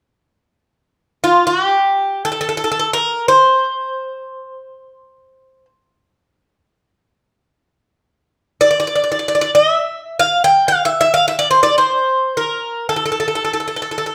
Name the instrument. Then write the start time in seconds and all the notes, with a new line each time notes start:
bouzouki
1.24 F4
1.47 F#4
1.64 G4
2.25 A4
2.32 A4
2.41 A4
2.49 A4
2.57 A4
2.64 A4
2.72 A4
2.79 A4
2.93 A#4
3.28 C5
8.61 D5
8.71 D5
8.80 D5
8.87 D5
8.96 D5
9.04 D5
9.12 D5
9.19 D5
9.28 D5
9.35 D5
9.41 D5
9.55 D#5
9.72 E5
10.19 F5
10.44 G5
10.68 F5
10.85 E5
11.01 E5
11.14 F5
11.28 E5
11.39 D5
11.51 C5
11.63 D5
11.78 C5
12.37 A#4
12.89 A4
12.96 A4
13.06 A4
13.12 A4
13.20 A4
13.28 A4
13.35 A4
13.45 A4
13.53 A4
13.60 A4
13.68 A4
13.76 A4
13.82 A4
13.91 A4
13.98 A4
14.06 A4